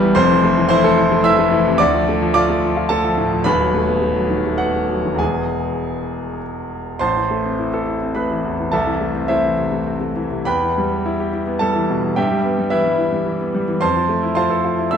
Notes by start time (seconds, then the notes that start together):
Already playing: G1 G2 E3 G3 B3 E4 G4 E5 G5
0.03 E3
0.15 F1 F2 C5 C6
0.30 E3
0.44 A3
0.57 E3
0.69 E4 C5 C6
0.84 A4
0.98 E4
1.12 A3
1.24 E3 E5 E6
1.39 A3
1.51 E3
1.67 C3
1.78 D2 D5 D6
1.94 F3
2.08 A3
2.22 F3
2.34 F4 D5 D6
2.50 A3
2.64 F3
2.77 F4
2.89 A3 A4 A5
3.04 F3
3.17 A2
3.32 F3
3.44 D#1 D#2 B4 B5
3.60 F#3
3.74 A3
3.88 B3
4.02 A3
4.16 F#3
4.30 D#3
4.46 A3
4.58 B3 F#4 F#5
4.75 A3
4.89 F#3
5.05 D#3
5.15 E2 E3 G#3 B3 G#5
5.19 E1 G#4
6.99 A1 C5 A5 C6
7.17 E3
7.31 A3
7.45 C4
7.59 E4
7.74 A4
7.88 E4
8.02 C4
8.15 A3 B4 B5
8.31 E3
8.45 E2
8.60 E3
8.72 C2 A4 E5 A5
8.87 E3
9.01 A3
9.16 C4
9.28 A3 E4 C5 E5
9.44 E3
9.58 C3
9.71 A3
9.87 C4
10.01 A3
10.16 E3
10.32 C3
10.45 E2 B4 G5 B5
10.63 E3
10.78 G3
10.92 B3
11.06 E4
11.20 G4
11.33 E4
11.47 B3
11.59 G3 A4 A5
11.76 E3
11.90 B2
12.03 E3
12.16 G2 G4 E5 G5
12.32 G3
12.45 B3
12.59 G3
12.70 E3 E4 B4 E5
12.85 G3
12.99 E3
13.12 G3
13.26 E3
13.41 B3
13.55 G3
13.68 E3
13.81 F2 C5 A5 C6
13.97 F3
14.09 A3
14.23 E4
14.35 F4 C5 A5 C6
14.50 A4
14.65 F4
14.79 E4
14.91 A3 E5 C6 E6